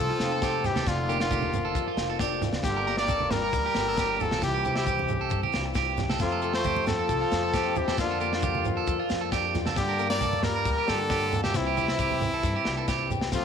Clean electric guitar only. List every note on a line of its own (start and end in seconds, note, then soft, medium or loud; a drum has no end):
0.10 0.31 F4 medium
0.32 0.42 A4 medium
0.43 0.64 G4 medium
0.76 0.86 A4 medium
1.09 1.20 G4 medium
1.20 1.31 F4 medium
1.31 1.52 G4 medium
1.65 1.86 A4 medium
1.88 2.09 F4 medium
2.10 2.20 A4 medium
2.20 2.41 G4 medium
2.76 2.86 A#4 medium
2.87 2.98 A#4 medium
2.98 3.09 G4 medium
3.09 3.30 A4 medium
3.44 3.64 A#4 medium
3.66 3.87 G4 medium
3.88 3.98 A4 medium
3.99 4.20 G4 medium
4.33 4.43 A4 medium
4.54 4.64 G4 medium
4.65 4.76 G4 medium
4.76 4.86 E4 medium
4.87 5.08 G4 medium
5.21 5.42 A4 medium
5.43 5.64 G4 medium
5.66 muted clean electric guitar stroke medium
5.76 5.97 G4 medium
6.10 6.20 A4 medium
6.32 6.41 A4 medium
6.42 6.54 A4 medium
6.54 6.65 F4 medium
6.66 6.87 G4 medium
6.99 7.20 A4 medium
7.21 7.42 F4 medium
7.43 7.53 A4 medium
7.54 7.75 G4 medium
7.88 7.98 A4 medium
8.11 8.20 A4 medium
8.21 8.32 G4 medium
8.33 8.43 D4 medium
8.43 8.64 G4 medium
8.77 8.98 A4 medium
8.99 9.20 F4 medium
9.21 9.31 A4 medium
9.32 9.53 G4 medium
9.66 9.76 A4 medium
9.89 9.98 A#4 medium
9.99 10.10 A#4 medium
10.11 10.21 G4 medium
10.22 10.43 A4 medium
10.56 10.76 A#4 medium
10.78 10.99 G4 medium
11.00 muted clean electric guitar stroke medium
11.10 11.31 G4 medium
11.44 11.54 A4 medium
11.67 11.76 G4 medium
11.77 11.88 G4 medium
11.89 11.99 E4 medium
12.00 12.21 G4 medium
12.34 12.54 A4 medium
12.56 12.77 G4 medium
12.77 12.88 A4 medium
12.88 13.09 G4 medium